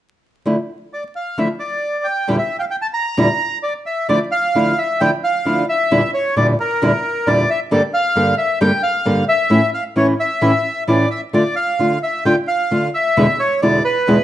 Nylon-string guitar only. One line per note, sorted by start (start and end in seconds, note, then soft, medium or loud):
0.46 0.55 D3 medium
0.46 0.55 F3 medium
0.46 0.55 A3 medium
0.46 0.55 D4 medium
0.46 0.56 E4 medium
1.38 1.47 D3 medium
1.38 1.47 F3 medium
1.38 1.47 A3 medium
1.38 1.47 D4 medium
1.38 1.47 E4 medium
2.28 2.37 E2 medium
2.28 2.37 A#2 medium
2.28 2.37 D3 medium
2.28 2.37 G3 medium
2.28 2.37 D4 medium
2.28 2.37 E4 medium
3.17 3.26 E2 medium
3.17 3.27 A#2 medium
3.17 3.27 D3 medium
3.17 3.27 G3 medium
3.17 3.27 D4 medium
3.17 3.27 E4 medium
4.09 4.18 D3 medium
4.09 4.18 F3 medium
4.09 4.18 A3 medium
4.09 4.18 D4 medium
4.09 4.18 E4 medium
4.55 4.72 D3 medium
4.55 4.72 F3 medium
4.55 4.72 A3 medium
4.55 4.72 D4 medium
4.55 4.72 E4 medium
5.01 5.10 D3 medium
5.01 5.10 F3 medium
5.01 5.10 A3 medium
5.01 5.10 D4 medium
5.01 5.10 E4 medium
5.45 5.62 D3 medium
5.45 5.63 F3 medium
5.45 5.63 A3 medium
5.45 5.63 D4 medium
5.45 5.63 E4 medium
5.91 6.00 E2 medium
5.91 6.00 A#2 medium
5.91 6.00 D3 medium
5.91 6.00 G3 medium
5.91 6.01 D4 medium
5.91 6.01 E4 medium
6.36 6.53 E2 medium
6.36 6.53 A#2 medium
6.36 6.53 D3 medium
6.36 6.53 G3 medium
6.36 6.54 D4 medium
6.36 6.54 E4 medium
6.82 6.91 E2 medium
6.82 6.91 A#2 medium
6.82 6.91 D3 medium
6.82 6.91 G3 medium
6.82 6.91 D4 medium
6.82 6.91 E4 medium
7.27 7.43 E2 medium
7.27 7.43 A#2 medium
7.27 7.43 D3 medium
7.27 7.43 G3 medium
7.27 7.44 D4 medium
7.27 7.44 E4 medium
7.71 7.80 G2 medium
7.71 7.80 D3 medium
7.71 7.80 G3 medium
7.71 7.80 A#3 medium
7.71 7.80 D4 medium
7.71 7.80 A4 medium
8.15 8.32 G2 medium
8.15 8.33 D3 medium
8.15 8.33 G3 medium
8.15 8.33 A#3 medium
8.15 8.33 D4 medium
8.15 8.33 A4 medium
8.61 8.70 G2 medium
8.61 8.70 D3 medium
8.61 8.70 G3 medium
8.61 8.70 A#3 medium
8.61 8.70 D4 medium
8.61 8.70 A4 medium
9.05 9.22 G2 medium
9.05 9.22 D3 medium
9.05 9.23 G3 medium
9.05 9.23 A#3 medium
9.05 9.23 D4 medium
9.05 9.23 A4 medium
9.50 9.59 A2 medium
9.50 9.59 E3 medium
9.50 9.60 A3 medium
9.50 9.60 C#4 medium
9.50 9.60 E4 medium
9.96 10.13 A2 medium
9.96 10.13 E3 medium
9.96 10.13 A3 medium
9.96 10.13 C#4 medium
9.96 10.13 E4 medium
10.41 10.50 A2 medium
10.41 10.51 E3 medium
10.41 10.50 A3 medium
10.41 10.51 C#4 medium
10.41 10.51 E4 medium
10.87 11.05 A2 medium
10.87 11.05 E3 medium
10.87 11.05 A3 medium
10.87 11.05 C#4 medium
10.87 11.05 E4 medium
11.33 11.42 D3 medium
11.33 11.43 A3 medium
11.33 11.43 D4 medium
11.33 11.43 F4 medium
11.79 11.96 D3 medium
11.79 11.97 A3 medium
11.79 11.97 D4 medium
11.79 11.97 F4 medium
12.25 12.34 D3 medium
12.25 12.34 A3 medium
12.25 12.34 D4 medium
12.25 12.35 F4 medium
12.71 12.88 D3 medium
12.71 12.88 A3 medium
12.71 12.88 D4 medium
12.71 12.88 F4 medium
13.17 13.26 E2 medium
13.17 13.26 B2 medium
13.17 13.26 D3 medium
13.17 13.26 G#3 medium
13.17 13.26 B3 medium
13.17 13.26 E4 medium
13.62 13.79 E2 medium
13.62 13.79 B2 medium
13.62 13.79 D3 medium
13.62 13.79 G#3 medium
13.62 13.79 B3 medium
13.62 13.79 E4 medium
14.07 14.16 E2 medium
14.07 14.16 B2 medium
14.07 14.16 D3 medium
14.07 14.17 G#3 medium
14.07 14.17 B3 medium
14.07 14.17 E4 medium